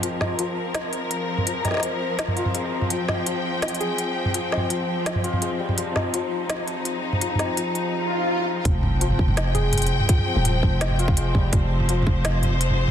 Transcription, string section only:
\new Staff \with { instrumentName = "String section" } { \time 4/4 \key f \minor \tempo 4 = 167 << { bes'1~ | bes'1 | g''1~ | g''1 |
ees'1~ | ees'1 | g''1~ | g''1 |
c''1 | } \\ { <f c'>1~ | <f c'>1~ | <f c'>1~ | <f c'>1~ |
<f c'>1~ | <f c'>1 | <f c'>1~ | <f c'>1~ |
<f c'>1 | } >> }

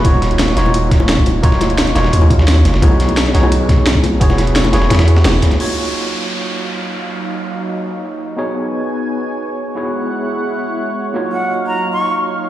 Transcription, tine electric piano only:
\new Staff \with { instrumentName = "Tine electric piano" } { \time 4/4 \key ees \minor \tempo 4 = 173 <bes ees' f' ges' des''>4. <bes ees' f' ges' des''>2~ <bes ees' f' ges' des''>8 | <bes ees' f' ges' des''>4. <bes ees' f' ges' des''>2~ <bes ees' f' ges' des''>8 | <b dis' fis' gis' cis''>4. <b dis' fis' gis' cis''>2~ <b dis' fis' gis' cis''>8 | <b e' fis' gis' cis''>4. <b e' fis' gis' cis''>2~ <b e' fis' gis' cis''>8 |
<bes ees' f' ges' des''>1~ | <bes ees' f' ges' des''>1 | <b dis' fis' gis' cis''>1 | <b e' fis' gis' cis''>1 |
<bes ees' f' ges' des''>1 | }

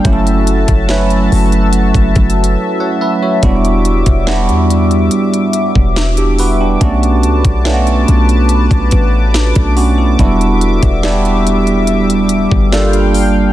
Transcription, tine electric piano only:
\new Staff \with { instrumentName = "Tine electric piano" } { \time 4/4 \key e \dorian \tempo 4 = 71 << { r2. r16 <cis'' fis''>16 <b' e''>16 <fis' cis''>16~ | <fis' cis''>16 r2. <d' g'>16 <fis' b'>16 <d' g'>16~ | <d' g'>16 r2. <a d'>16 <cis' fis'>16 <e' a'>16~ | <e' a'>16 r2. r8. | } \\ { <fis a cis' e' g' a'>4 <fis a cis' e' b'>4. r4. | <g b d' e' fis'>4 <g b d' e' fis'>4. r4. | <a b cis' d' fis'>4 <a b cis' d' f' fis'>4. r4. | <fis g b d' e' fis'>4 <g b d' e' fis' g'>4. r8 <g bes d' f' a'>4 | } >> }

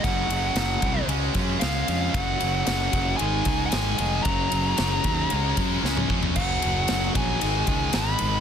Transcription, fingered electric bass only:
\new Staff \with { instrumentName = "Fingered electric bass" } { \clef bass \time 4/4 \key fis \major \tempo 4 = 114 fis,,8 fis,,8 fis,,8 bis,,8 cis,8 fis,8 cis,8 eis,8 | fis,,8 fis,,8 fis,,8 fis,,8 gis,,8 cis,8 gis,,8 eis,,8 | fis,,8 fis,,8 fis,,8 dis,8 cis,8 fis,8 cis,8 eis,8 | fis,,8 fis,,8 fis,,8 ais,,8 gis,,8 cis,8 gis,,8 gis,,8 | }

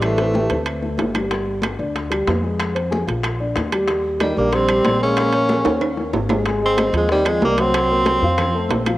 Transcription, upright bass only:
\new Staff \with { instrumentName = "Upright bass" } { \clef bass \time 4/4 \key ees \major \tempo 4 = 187 a,,4. d,4. g,,4~ | g,,4. d,4. f,4~ | f,4. bes,,4. ees,4~ | ees,4. bes,,4. bes,,4~ |
bes,,4. ees,4. aes,,4~ | \key aes \major aes,,4. ees,4. c,4~ | c,4. f,4. bes,,4 | }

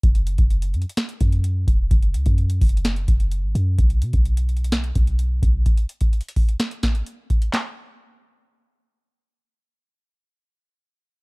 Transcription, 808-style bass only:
\new Staff \with { instrumentName = "808-style bass" } { \clef bass \time 4/4 \key b \dorian \tempo 4 = 128 fis,,8. fis,,8. fis,16 r8. fis,4 e,,8 | fis,,8 cis,16 fis,8. fis,,4 fis,,8. gis,,16 fis,8 | b,,8 b,16 b,,4.~ b,,16 b,,4 b,,8 | r1 |
r1 | r1 | }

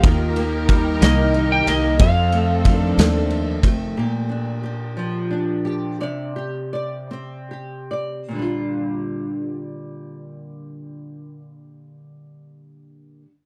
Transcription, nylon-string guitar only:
\new Staff \with { instrumentName = "Nylon-string guitar" } { \time 6/8 \key bes \major \tempo 4. = 56 ees8 bes8 g8 bes8 ees'8 bes8 | f,8 a8 ees8 a4 a8 | <bes, g'>8 d'8 g'8 f8 d'8 g'8 | <c d''>8 g'8 d''8 c'8 g'8 d''8 |
<bes, d g d' f'>2.~ | <bes, d g d' f'>2. | }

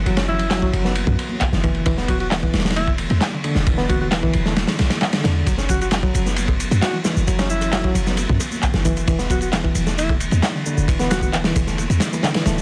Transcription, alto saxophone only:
\new Staff \with { instrumentName = "Alto saxophone" } { \time 4/4 \key e \mixolydian \tempo 4 = 133 r8 e'4 r2 r8 | r8 fis'16 fis'16 r4 e'16 r4. r16 | r8 fis'16 fis'16 r2. | r8 fis'16 fis'16 r2 fis'16 r8. |
r8 e'4 r2 r8 | r8 fis'16 fis'16 r4 e'16 r4. r16 | r8 fis'16 fis'16 r2. | }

